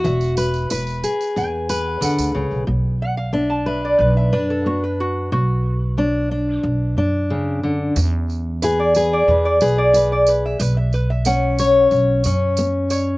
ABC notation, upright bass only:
X:1
M:4/4
L:1/16
Q:1/4=91
K:Bdor
V:1 name="Upright bass" clef=bass
E,,,4 E,,,2 z2 E,,4 E,, D,, C,, B,,, | B,,,8 B,,,2 F,,6 | B,,,8 B,,,2 F,,6 | E,,8 E,,2 B,,,6 |
B,,,8 B,,,2 F,,6 |]